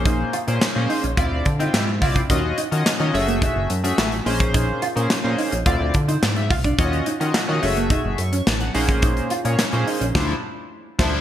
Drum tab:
CC |----------------|----------------|----------------|----------------|
HH |x-xxx-oxx-xxx-ox|x-xxxxoxx-xxxxox|x-xxx-oxx-xxxxox|xxxxx-oxx-xxxxox|
CP |----x-------x---|----x-------x---|----x-------x---|----x-------x---|
SD |----o-------o---|----o-------o---|----o-------o---|----o-------o---|
BD |o-------o-o---oo|o-------o------o|o-------o-o---oo|o-------o------o|

CC |--------x-----x-|
HH |xxxxxxox--------|
CP |----x-----------|
SD |----o---o-----o-|
BD |o-------o-----o-|